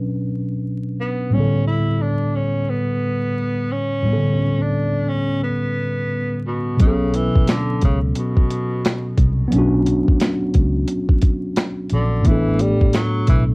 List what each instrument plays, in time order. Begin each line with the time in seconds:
Already playing: tine electric piano B2 F#3 C#4 D4 B4
1.01 tenor saxophone B3
1.30 tine electric piano A2 G3, tenor saxophone C#4
1.35 tine electric piano D3 B3
1.40 tine electric piano A4
1.68 tenor saxophone E4
2.02 tenor saxophone D4
2.35 tenor saxophone C#4
2.69 tenor saxophone B3
3.72 tenor saxophone C#4
4.03 tine electric piano A2 G3
4.08 tine electric piano B3 C#4
4.13 tine electric piano A4
4.17 tine electric piano D3
4.62 tenor saxophone D4
5.09 tenor saxophone C#4
5.43 tenor saxophone B3
6.47 tenor saxophone B2
6.77 fingered electric bass B1, tine electric piano B2 F#3, kick, closed hi-hat
6.81 tenor saxophone C#3, tine electric piano B3 C#4
6.87 tine electric piano A4
7.14 tenor saxophone E3, closed hi-hat
7.36 kick
7.47 tenor saxophone D3, finger snap, snare, closed hi-hat
7.81 fingered electric bass C#2, tenor saxophone C#3, kick, closed hi-hat
8.15 tenor saxophone B2, closed hi-hat
8.37 kick
8.50 closed hi-hat
8.85 finger snap, snare, closed hi-hat
9.18 fingered electric bass C2, kick, closed hi-hat
9.48 tine electric piano F#3 B3
9.52 fingered electric bass B1, tine electric piano C#4 D4, closed hi-hat
9.59 tine electric piano F#4
9.86 closed hi-hat
10.08 kick
10.20 finger snap, snare, closed hi-hat
10.54 fingered electric bass C#2, kick, closed hi-hat
10.88 closed hi-hat
11.09 kick
11.22 kick, closed hi-hat
11.56 finger snap, snare, closed hi-hat
11.89 fingered electric bass A#1, closed hi-hat
11.94 tenor saxophone D3
12.21 tine electric piano A2 A3, closed hi-hat
12.25 fingered electric bass A1, tenor saxophone E3, tine electric piano B3 D4, kick
12.31 tine electric piano A4
12.59 tenor saxophone G3, closed hi-hat
12.81 kick
12.93 tenor saxophone F#3, finger snap, snare, closed hi-hat
13.27 fingered electric bass B1, tenor saxophone E3, kick, closed hi-hat